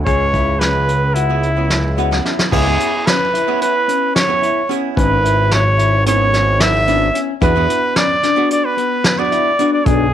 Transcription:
0.05 C#2 G#4 C#5, kick, closed hi-hat
0.33 E4, kick, closed hi-hat
0.59 C#4 B4, snare, closed hi-hat
0.88 closed hi-hat
1.14 E4 F#4, closed hi-hat
1.29 B3 C#4 E4 G#4
1.43 E4, closed hi-hat
1.57 B3 C#4 E4 G#4
1.70 snare, closed hi-hat
1.97 B3 C#4 E4 F#4 B4, closed hi-hat
2.11 B3 C#4 E4 G#4, snare
2.25 E4, snare
2.39 snare
2.52 C#2 B3 C#4 E4 G#4, kick, crash
2.66 B3 C#4 E4 G#4
2.80 closed hi-hat
3.06 C#4 B4, snare, closed hi-hat
3.34 E4, closed hi-hat
3.47 B3 C#4 E4 G#4
3.61 B4, closed hi-hat
3.88 C#4, closed hi-hat
4.16 C#5, snare, closed hi-hat
4.28 B3 C#4 E4 G#4
4.42 E4, closed hi-hat
4.69 B3 C#4 E4 G#4, closed hi-hat
4.96 G#1 C#4 B4, kick, closed hi-hat
5.24 E4, closed hi-hat
5.51 C#5, snare, closed hi-hat
5.78 E4, closed hi-hat
6.06 B3 C#4 E4 G#4 C#5, closed hi-hat
6.33 snare, closed hi-hat
6.60 E4 E5, snare, closed hi-hat
6.87 B3 C#4 D4 E4 G#4, closed hi-hat
7.14 C#4, closed hi-hat
7.41 E2 B3 D4 E4 F#4 G#4 B4, kick, closed hi-hat
7.56 B3 D4 F#4 G#4
7.70 closed hi-hat
7.96 C#4 D5, snare, closed hi-hat
8.23 D4, snare, closed hi-hat
8.36 B3 D4 F#4 G#4
8.50 D5, closed hi-hat
8.65 B4
8.77 B3, closed hi-hat
9.04 snare, closed hi-hat
9.18 B3 D4 F#4 G#4 D5
9.32 E4, closed hi-hat
9.59 B3 D4 F#4 G#4, closed hi-hat
9.74 D5
9.86 B1 D4 G#4, kick, closed hi-hat

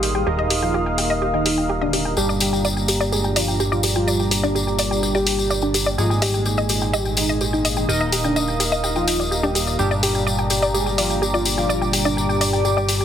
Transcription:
Already playing: G#1 A#2 G#3 D#4 G#4 F5 C6 D#6
0.03 G4, open hi-hat
0.15 G4 G5
0.27 D#1 D#4 G4 A#4 D#5 A#5
0.39 D#5
0.50 G4, open hi-hat
0.63 F4 G5
0.74 G4
0.86 G5
0.98 G4, open hi-hat
1.10 D#5
1.22 G4
1.34 D#4 G5
1.46 G4, open hi-hat
1.58 G5
1.69 G4
1.81 D4 D#5
1.93 G4, open hi-hat
2.05 G5
2.17 G1 A#2 G3 D4 G4 D5 D6, tambourine
2.29 D5, tambourine
2.40 G4, open hi-hat, tambourine
2.53 G5, tambourine
2.65 D5, tambourine
2.77 G5, tambourine
2.88 G4, open hi-hat, tambourine
3.00 D5, tambourine
3.12 G4 G#4, tambourine
3.24 G5, tambourine
3.36 F4 D5, open hi-hat, tambourine
3.48 G5, tambourine
3.60 G4, tambourine
3.72 F4 D5, tambourine
3.83 G4, open hi-hat, tambourine
3.95 F4 G5, tambourine
4.07 D5, tambourine
4.20 G5, tambourine
4.31 G4, open hi-hat, tambourine
4.43 D4 D5, tambourine
4.55 G4, tambourine
4.67 G5, tambourine
4.79 D5, open hi-hat, tambourine
4.91 G5, tambourine
5.03 G4, tambourine
5.15 G4 D5, tambourine
5.27 G4, open hi-hat, tambourine
5.39 G5, tambourine
5.50 D5, tambourine
5.62 D4 G5, tambourine
5.74 G4, open hi-hat, tambourine
5.86 D5, tambourine
5.98 G#1 G#3 D#4 F4 G4 G#4 F5 C6 D#6, tambourine
6.10 G5, tambourine
6.22 G4 D#5, open hi-hat, tambourine
6.34 G5, tambourine
6.45 G4, tambourine
6.57 D#5, tambourine
6.69 G4, open hi-hat, tambourine
6.81 G5, tambourine
6.93 G4 D#5, tambourine
7.05 G5, tambourine
7.17 D#4 G4, open hi-hat, tambourine
7.29 D#5, tambourine
7.41 G4, tambourine
7.53 D#4 G5, tambourine
7.65 D#5, open hi-hat, tambourine
7.77 D#4 G5, tambourine
7.89 D#1 D#4 G4 A#4 D#5 A#5, tambourine
8.00 D#5, tambourine
8.12 G4, open hi-hat, tambourine
8.24 D4 G5, tambourine
8.36 D#5, tambourine
8.48 G5, tambourine
8.60 G4, open hi-hat, tambourine
8.72 D#5, tambourine
8.84 G4, tambourine
8.96 F4 G5, tambourine
9.08 G5, open hi-hat, tambourine
9.20 D5, tambourine
9.31 G4, tambourine
9.43 D4 G4
9.55 G4, open hi-hat, tambourine
9.67 D5, tambourine
9.79 G1 G3 D4 G4 D5 D6, tambourine
9.91 D5, tambourine
10.03 G4, open hi-hat, tambourine
10.15 G5, tambourine
10.27 D5, tambourine
10.38 G5, tambourine
10.50 G4, open hi-hat, tambourine
10.62 D5, tambourine
10.74 G4 G#4, tambourine
10.86 G5, tambourine
10.98 F4 D5, open hi-hat, tambourine
11.10 G5, tambourine
11.22 G4, tambourine
11.34 F4 D5, tambourine
11.45 G4, open hi-hat, tambourine
11.58 F4 G5, tambourine
11.69 D5, tambourine
11.82 G5, tambourine
11.93 G4, open hi-hat, tambourine
12.05 D4 D5, tambourine
12.17 G4, tambourine
12.29 G5, tambourine
12.41 D5, open hi-hat, tambourine
12.53 G5, tambourine
12.65 G4, tambourine
12.77 G4 D5, tambourine
12.89 G4, open hi-hat, tambourine
13.01 G5, tambourine

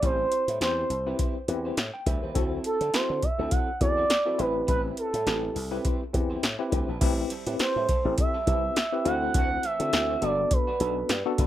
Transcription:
0.02 A1 G3 C4 E4 G4 B4 C5, kick, closed hi-hat
0.32 muted clean electric guitar stroke, closed hi-hat
0.48 A2 G3 C4 E4 B4, closed hi-hat
0.61 E2 G3 C4 E4 G4 B4 C5, snare, closed hi-hat
0.77 muted clean electric guitar stroke
0.90 C2, muted clean electric guitar stroke, closed hi-hat
1.06 G3 C4 E4 G4 B4
1.19 G3 C4 E4 C5, kick, closed hi-hat
1.36 muted clean electric guitar stroke
1.48 E2 C4 E4 G4 B4, muted clean electric guitar stroke, closed hi-hat
1.65 G3 C4 E4 C5
1.77 A2, muted clean electric guitar stroke, snare, closed hi-hat
1.94 G5, muted clean electric guitar stroke
2.06 D2 G3 C4 E4 B4 E5, kick, closed hi-hat
2.23 D#2 G3 C4 E4 B4 C5
2.35 D2 F#3 C4 E4 F#4 A4, kick, closed hi-hat
2.64 A4, muted clean electric guitar stroke, closed hi-hat
2.81 D3 F#3 C4 E4 A4, closed hi-hat
2.93 F#3 C4 E4 F#4 A4 C5, muted slap bass stroke, snare, closed hi-hat
3.10 D3, muted clean electric guitar stroke
3.23 E5, muted clean electric guitar stroke, kick, closed hi-hat
3.38 D2 F#3 C4 E4 F#4 A4
3.51 F#3 C4 E4 A4 F#5, kick, closed hi-hat
3.68 muted clean electric guitar stroke
3.81 E2 C4 E4 F#4 A4 D5, muted clean electric guitar stroke, kick, closed hi-hat
3.97 F#3 C4 E4 A4
4.10 muted clean electric guitar stroke, snare, closed hi-hat
4.25 F#3 C4 E4 F#4 A4 B4
4.38 A1 G3 C4 E4 G4 B4, closed hi-hat
4.55 muted clean electric guitar stroke
4.67 A1 G3 C4 E4 B4, kick, closed hi-hat
4.97 A4, muted clean electric guitar stroke, closed hi-hat
5.13 A2 G3 C4 E4 B4, closed hi-hat
5.26 A1 G3 C4 E4 G4 B4, snare, closed hi-hat
5.43 muted clean electric guitar stroke
5.55 C2, muted clean electric guitar stroke, open hi-hat
5.71 G3 C4 E4 G4 B4
5.84 G3 C4 E4 C5, kick, closed hi-hat
6.01 muted clean electric guitar stroke
6.13 E2 C4 E4 G4 B4, muted clean electric guitar stroke, kick, closed hi-hat
6.30 G3 C4 E4 C5
6.43 A2, muted clean electric guitar stroke, snare, closed hi-hat
6.59 C4 E4 G4 B4, muted clean electric guitar stroke
6.72 D2 G3 C4 E4 B4, kick, closed hi-hat
6.88 A#1 G3 C4 E4 B4
7.01 A1 G3 C4 E4 G4 A4 B4, kick, closed hi-hat, crash
7.18 muted clean electric guitar stroke
7.30 G3 C4 E4 A4, closed hi-hat
7.46 A2 G3 C4 E4 G4 A4 B4, closed hi-hat
7.59 C5, muted slap bass stroke, muted clean electric guitar stroke, snare, closed hi-hat
7.76 A2 G3 C4 E4 A4
7.89 G3 C4 E4 A4, kick, closed hi-hat
8.05 A1 C4 E4 G4 A4, muted clean electric guitar stroke
8.18 E5, muted clean electric guitar stroke, kick, closed hi-hat
8.34 G3 C4 E4 A4
8.47 C2 G3 C4 E4 G4 A4 B4, kick, closed hi-hat
8.64 muted clean electric guitar stroke
8.76 muted clean electric guitar stroke, snare, closed hi-hat
8.92 C4 E4 G4 B4, muted clean electric guitar stroke
9.05 D2 E3 A3 C4 E4 F#4 A4 F#5, closed hi-hat
9.21 E3 A3 C4 A4
9.34 D2 E3 A3 C4 F#4 F#5, kick, closed hi-hat
9.51 muted clean electric guitar stroke
9.63 E3 A3 C4 A4 E5, closed hi-hat
9.80 D3 E3 A3 C4 E4 F#4 A4, closed hi-hat
9.93 D2, muted clean electric guitar stroke, snare, closed hi-hat
10.09 E3 A3 C4 F#4
10.21 G1 F#3 B3 D4 F#4 A4 D5, closed hi-hat
10.38 muted clean electric guitar stroke
10.51 B4, muted clean electric guitar stroke, kick, closed hi-hat
10.67 F#3 B3 D4 F#4
10.80 B1 F#3 B3 D4 F#4 A4, closed hi-hat
10.97 muted clean electric guitar stroke
11.09 G2, muted clean electric guitar stroke, snare, closed hi-hat
11.26 B3 D4 F#4 A4, muted clean electric guitar stroke
11.38 G1 F#3 B3 D4 F#4, kick, closed hi-hat

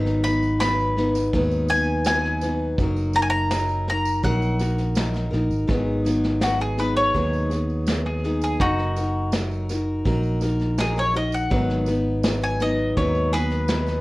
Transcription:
Already playing: G#1 G#2 D#3 F#3 B3 D#4 B4
0.06 snare, tambourine
0.23 B3 D#4 B4 B5, snare, tambourine
0.27 F#3
0.43 tambourine
0.59 F#3 B3 D#4 B5, snare, tambourine
0.63 B4
0.79 tambourine
0.97 F#3 B3 D#4 B4, snare, tambourine
1.15 snare, tambourine
1.33 D#2 G#2 D#3 F#3 B3 D#4 B4, kick, snare
1.51 tambourine
1.68 D#4 B4 G#5, snare, tambourine
1.72 F#3 B3
2.04 F#3 B3 D#4 G#5, snare, tambourine
2.09 B4
2.25 snare
2.41 B3 D#4 B4, snare, tambourine
2.45 F#3
2.78 F#1 F#3 D#4 F#4 A#4, kick, snare, tambourine
2.97 tambourine
3.13 F#4 A#4 A#5, snare, tambourine
3.18 D#4 G#5
3.30 A#5, tambourine
3.51 F#3 D#4 F#4 A#4, snare, tambourine
3.69 tambourine
3.87 D#4 F#4 A#4 A#5, snare
4.05 tambourine
4.23 A#1 F#3 D#4 F#4 A#4 F#5, kick, snare, tambourine
4.42 tambourine
4.59 D#4 F#4 A#4, snare, tambourine
4.79 snare, tambourine
4.96 F#3 D#4 F#4 A#4, snare, tambourine
5.14 snare, tambourine
5.31 A#1 D#4 F#4 A#4, snare
5.50 G#1, tambourine
5.68 G#1 G#2 D#3 F#3 B3 D#4 G#4, kick, snare
6.05 F#3 B3 D#4 G#4, snare, tambourine
6.23 snare
6.40 F#3 B3 D#4 F#4 G#4, snare, tambourine
6.60 G#4, tambourine
6.77 F#3 B3 D#4 G#4 B4, snare, tambourine
6.96 C#5, snare
7.14 D#2 G#2 D#3 F#3 B3 D#4 G#4, kick, snare
7.33 tambourine
7.50 F#3 B3 D#4 G#4, snare, tambourine
7.69 tambourine
7.87 F#3 B3 D#4 G#4, snare, tambourine
8.05 G#4, snare
8.24 B3 D#4 G#4, snare, tambourine
8.28 F#3
8.42 G#4, tambourine
8.60 F#1 F#3 D#4 F#4 A#4, kick, snare
8.79 snare
8.96 D#4 F#4 A#4, snare, tambourine
9.32 F#3 D#4 F#4, snare, tambourine
9.36 A#4
9.51 tambourine
9.69 D#4 F#4 A#4, snare, tambourine
10.05 A#1 F#3 D#4 F#4 A#4, kick, snare
10.23 tambourine
10.41 D#4 F#4 A#4, snare, tambourine
10.60 snare, tambourine
10.78 F#3 D#4 F#4 G#4 A#4, snare, tambourine
10.96 C#5, snare, tambourine
11.14 D#4 F#4 A#4 D#5, snare, tambourine
11.32 F#5, tambourine
11.50 G#1 G#2 D#3 F#3 B3 D#4 B4, kick, snare
11.70 snare
11.86 B3 D#4 B4, snare, tambourine
11.91 F#3
12.23 F#3 B3 D#4 B4, snare, tambourine
12.42 G#5, tambourine
12.60 F#3 B3 D#4 B4 D#5, snare, tambourine
12.97 D#2 G#2 D#3 F#3 B3 D#4 B4 C#5, kick, snare
13.15 tambourine
13.32 F#3 B3 D#4 G#4 B4, snare, tambourine
13.50 snare, tambourine
13.68 F#3 B3 D#4, snare, tambourine
13.72 B4
13.86 snare, tambourine

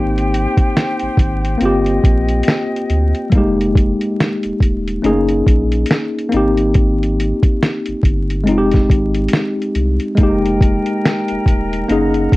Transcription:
Already playing: G#1 A#3 C4 D#4 G4 C5 G5
0.18 closed hi-hat
0.34 closed hi-hat
0.57 kick, closed hi-hat
0.77 snare, closed hi-hat
1.00 G#1, closed hi-hat
1.17 G#1, kick, closed hi-hat
1.45 closed hi-hat
1.58 G1 A#3 C4, closed hi-hat
1.62 F4 G4 D#5
1.86 closed hi-hat
2.04 A#1, kick, closed hi-hat
2.29 closed hi-hat
2.43 closed hi-hat
2.48 snare
2.76 closed hi-hat
2.90 D2, closed hi-hat
3.15 closed hi-hat
3.30 F1 G3 A#3, kick, closed hi-hat
3.35 G#3 D#4 G4
3.61 closed hi-hat
3.75 kick, closed hi-hat
4.01 closed hi-hat
4.20 snare, closed hi-hat
4.43 D#1, closed hi-hat
4.60 D#1, kick, closed hi-hat
4.88 closed hi-hat
5.02 F#1 A3 C#4 D#4 G#4, closed hi-hat
5.09 A#3
5.29 closed hi-hat
5.46 A#1, kick, closed hi-hat
5.72 closed hi-hat
5.86 closed hi-hat
5.91 snare
6.19 closed hi-hat
6.29 A#3 C4, closed hi-hat
6.34 G#1 D#4 G4
6.57 closed hi-hat
6.74 kick, closed hi-hat
7.03 closed hi-hat
7.20 closed hi-hat
7.43 kick, closed hi-hat
7.63 snare, closed hi-hat
7.86 G1, closed hi-hat
8.03 G1, kick, closed hi-hat
8.30 closed hi-hat
8.44 F1 G#3 C4, closed hi-hat
8.49 D#4 F4
8.58 G4
8.71 kick, snare, closed hi-hat
8.90 G#1, kick, closed hi-hat
9.14 closed hi-hat
9.28 closed hi-hat
9.33 snare
9.62 closed hi-hat
9.75 C2, closed hi-hat
10.00 closed hi-hat
10.15 F1 G#3 A#3 A#4 D#5 G5 A#5, kick, closed hi-hat
10.21 D#4 G4
10.46 closed hi-hat
10.61 kick, closed hi-hat
10.86 closed hi-hat
11.05 snare, closed hi-hat
11.28 D#1, closed hi-hat
11.46 D#1, kick, closed hi-hat
11.73 closed hi-hat
11.88 F#1 A#3 C#4 D#4 G#4 F#5, closed hi-hat
12.14 closed hi-hat
12.32 A#1, kick, closed hi-hat

